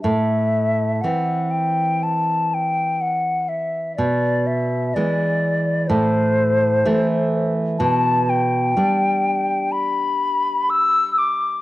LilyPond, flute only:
\new Staff \with { instrumentName = "Flute" } { \time 4/4 \key a \dorian \tempo 4 = 62 e''4 fis''8 g''8 a''8 g''8 fis''8 e''8 | d''8 e''8 d''4 c''4. r8 | a''8 g''4. b''4 e'''8 d'''8 | }